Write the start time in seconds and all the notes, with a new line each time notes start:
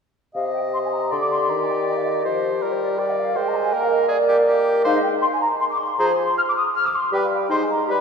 0.34 C3 G4 D#5 F5
0.45 D#5
0.53 G5
0.74 C6
0.85 G#5
0.92 A#5
1.11 D3 D5 C6
1.22 D6
1.32 C6
1.49 D#3 A#5
1.60 G#5
1.68 G5
1.88 D#5
1.96 F5
2.03 D#5
2.24 F3 G4 C5
2.62 G3 A#4 D5
2.73 C5
2.81 D5
2.98 A#4 D5 G5
3.09 D#5
3.18 F5
3.35 G#3 A#4 C5 G5
3.48 A#5
3.55 G#5
3.73 A#3 A#4 G5
3.83 F5
3.90 D#5
4.08 G#4 D5
4.28 G4
4.47 G4 A#4
4.85 G#3 D#4 C5 F5
4.95 D#5
5.03 G5
5.21 C6
5.33 G#5
5.41 A#5
5.60 C6
5.70 D6
5.78 C6
5.98 F3 G#4 C5 A#5
6.07 G#5
6.16 C6
6.37 F6
6.48 D6
6.56 D#6
6.75 F6
6.86 D6
6.94 C6
7.12 G3 G4 B4 G5
7.24 F5
7.32 G5
7.49 G#3 D#4 C5 C6
7.63 G#5
7.70 A#5
7.87 G3 G4 B4 B5